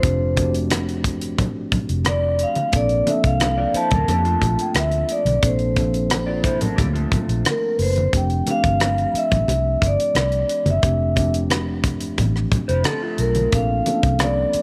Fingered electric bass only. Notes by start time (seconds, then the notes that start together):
0.03 F1
1.39 A1
1.89 F1
2.73 A#1
3.24 C2
3.74 muted fingered electric bass stroke
3.92 D2
4.08 F2
4.42 A#1
4.75 D2
5.25 B1
5.43 A#1
6.78 D2
7.28 A#1
7.79 F#1
8.13 F1
8.64 G1
9.14 muted fingered electric bass stroke
9.32 A1
9.48 C2
9.82 G1
10.15 C2
10.65 F#1
10.83 F1
12.18 A1
12.69 F1
13.19 B1
13.53 A#1
14.03 C2
14.54 muted fingered electric bass stroke